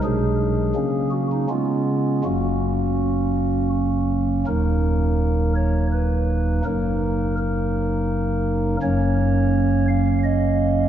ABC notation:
X:1
M:3/4
L:1/16
Q:1/4=83
K:F#
V:1 name="Pipe organ"
G6 F D E4 | F8 z4 | [K:Ebm] B6 d2 c4 | B4 B8 |
d6 f2 e4 |]
V:2 name="Pipe organ" clef=bass
[B,,,B,,F,G,=D]4 [C,F,A,C]4 [C,G,B,C]4 | [F,,,F,,F,A,C]12 | [K:Ebm] [E,,,E,,G,B,E]12 | [G,,,G,,G,B,E]12 |
[G,,,G,,G,B,D]12 |]